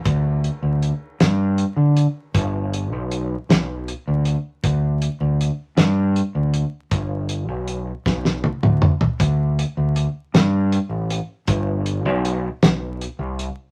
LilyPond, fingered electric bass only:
\new Staff \with { instrumentName = "Fingered electric bass" } { \clef bass \time 6/8 \key g \mixolydian \tempo 4. = 52 d,8. d,8 r16 g,8. d8 r16 | g,,8. b,,8. b,,8. d,8 r16 | d,8. d,8 r16 g,8. d,8 r16 | g,,8. b,,8. b,,8. d,8 r16 |
d,8. d,8 r16 g,8. a,,8 r16 | g,,8. b,,8. b,,8. c,8 r16 | }